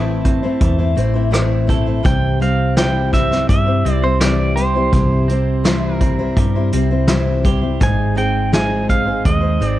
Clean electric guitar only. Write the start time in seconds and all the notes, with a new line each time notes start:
Already playing: A2 C4 E4
0.25 C4
0.61 E3
0.97 C4
1.33 E4
1.70 A4
2.05 C3
2.42 C4
2.79 E4
3.13 C4
3.50 G3
3.85 C4
4.20 E4
4.56 G4
4.92 C3
5.28 C4
5.65 E4
6.01 C4
6.37 G3
6.73 C4
7.09 E4
7.46 G4
7.81 G#2
8.17 C4
8.53 D#4
8.90 C4
9.27 G#3
9.62 C4